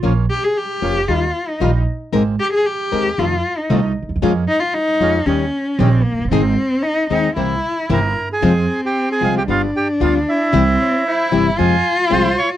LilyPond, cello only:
\new Staff \with { instrumentName = "Cello" } { \time 4/4 \key aes \major \tempo 4 = 114 r8 g'16 aes'16 g'4 f'8. ees'8 r8. | r8 g'16 aes'16 g'4 f'8. ees'8 r8. | r8 ees'16 f'16 ees'4 des'4 c'8 bes8 | c'4 ees'8 ees'8 e'4. r8 |
\key f \minor c'2 d'2 | c'4 e'4 f'2 | }